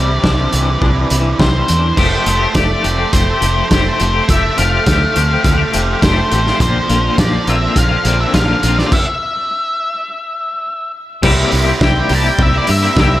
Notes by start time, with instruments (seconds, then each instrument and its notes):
Already playing: fingered electric bass C2, clean electric guitar C3 G3 C4, distorted electric guitar E3 C4 E4 G4, lead electric guitar D5
0.23 fingered electric bass C2, clean electric guitar D4, kick, snare
0.53 fingered electric bass C2, clean electric guitar E3, closed hi-hat
0.81 fingered electric bass C2, clean electric guitar D4, kick
1.10 fingered electric bass C2, clean electric guitar E3, closed hi-hat
1.39 fingered electric bass C2, clean electric guitar G3, lead electric guitar C5, kick, snare
1.68 fingered electric bass E2, clean electric guitar D4, closed hi-hat
1.97 fingered electric bass F1, clean electric guitar F3 A3 C4 G4, lead electric guitar C5, kick, crash
2.25 fingered electric bass F1, clean electric guitar F3 A3 C4 G4, closed hi-hat
2.39 clean electric guitar A3 C4 G4
2.53 fingered electric bass F1, clean electric guitar F3 A3 C4 G4, lead electric guitar D5, kick, snare, closed hi-hat
2.83 fingered electric bass F1, clean electric guitar F3 A3 C4 G4, closed hi-hat
2.97 clean electric guitar A3 C4 G4
3.13 fingered electric bass F1, distorted electric guitar A3, lead electric guitar C5, kick, closed hi-hat
3.27 clean electric guitar A3 C4 G4
3.41 fingered electric bass F1, clean electric guitar F3 A3 C4 G4, closed hi-hat
3.69 fingered electric bass F1, clean electric guitar F3 A3 C4 G4, lead electric guitar C5, kick, snare, closed hi-hat
3.85 clean electric guitar A3 G4
3.99 fingered electric bass F1, clean electric guitar F3 A3 C4 G4, closed hi-hat
4.13 clean electric guitar A3 C4 G4
4.28 fingered electric bass F1, clean electric guitar F3 A3 C4 G4, lead electric guitar E5, kick, closed hi-hat
4.57 fingered electric bass F1, clean electric guitar F3 A3 C4 G4, lead electric guitar F5, closed hi-hat
4.71 clean electric guitar A3 C4 G4
4.86 fingered electric bass D2, clean electric guitar F3 A3 C4 G4, kick, snare, closed hi-hat
5.15 fingered electric bass D2, clean electric guitar F3 A3 C4 G4, closed hi-hat
5.29 clean electric guitar A3 C4 G4
5.44 fingered electric bass D2, distorted electric guitar A3, kick, closed hi-hat
5.58 clean electric guitar A3 C4 G4
5.73 fingered electric bass F1, clean electric guitar F3 A3 C4 G4, closed hi-hat
6.01 fingered electric bass F1, clean electric guitar F3 A3 C4 G4, lead electric guitar C5, kick, snare, closed hi-hat
6.16 clean electric guitar A3 C4 G4
6.30 fingered electric bass A1, clean electric guitar F3 A3 C4 G4, closed hi-hat
6.45 clean electric guitar A3 C4 G4, snare
6.59 fingered electric bass A#1, clean electric guitar A#2 D3 A#3 C4 F4, distorted electric guitar F3, transistor combo organ F4 D5 A#5 C6, lead electric guitar C5, kick, closed hi-hat
6.88 fingered electric bass A#1, clean electric guitar D3 A#3 C4 F4, distorted electric guitar F3, closed hi-hat
7.03 clean electric guitar A#3 C4 F4
7.17 fingered electric bass A#1, clean electric guitar A#2 D3 A#3 C4 F4, distorted electric guitar F3, lead electric guitar D5, kick, snare, closed hi-hat
7.46 fingered electric bass A#1, clean electric guitar D3 A#3 C4 F4, lead electric guitar E5, closed hi-hat
7.62 clean electric guitar A#3
7.76 fingered electric bass A#1, distorted electric guitar F3, lead electric guitar F5, kick, closed hi-hat
7.89 clean electric guitar A#3 C4 F4
8.04 fingered electric bass A#1, clean electric guitar D3 A#3 C4 F4, distorted electric guitar D4, closed hi-hat
8.21 lead electric guitar E5
8.33 fingered electric bass A#1, clean electric guitar A#2 D3 A#3 C4 F4, distorted electric guitar F3, lead electric guitar F5, kick, snare, closed hi-hat
8.48 clean electric guitar A#3 C4 F4
8.61 fingered electric bass A#1, clean electric guitar D3 A#3 C4 F4, closed hi-hat
8.76 clean electric guitar A#3 C4 F4, lead electric guitar D5, snare
8.92 lead electric guitar E5, kick, crash
11.22 fingered electric bass C2, clean electric guitar C3 G3 A#3 E4 G4, distorted electric guitar C4, transistor combo organ G4 E5 A#5 C6, kick, crash
11.52 fingered electric bass C2, clean electric guitar G3 A#3 E4 G4, open hi-hat
11.66 clean electric guitar A#3 E4 G4, distorted electric guitar C4
11.81 fingered electric bass C2, clean electric guitar C3 G3 A#3 E4 G4, distorted electric guitar C4, lead electric guitar G5, kick, snare
12.09 fingered electric bass C2, clean electric guitar G3 A#3 E4 G4, distorted electric guitar C4, open hi-hat
12.15 lead electric guitar A5
12.24 clean electric guitar A#3 E4 G4, muted distorted electric guitar stroke
12.29 lead electric guitar G5
12.39 fingered electric bass C2, lead electric guitar E5, kick
12.53 clean electric guitar A#3 E4 G4, distorted electric guitar C4
12.58 lead electric guitar D5
12.67 fingered electric bass G2, clean electric guitar G3 A#3 E4 G4, muted distorted electric guitar stroke, open hi-hat
12.71 lead electric guitar E5
12.82 clean electric guitar A#3 E4 G4, distorted electric guitar C4
12.96 fingered electric bass C2, clean electric guitar C3 G3 A#3 E4 G4, distorted electric guitar C4, kick, snare
13.01 lead electric guitar E5
13.10 clean electric guitar E4 G4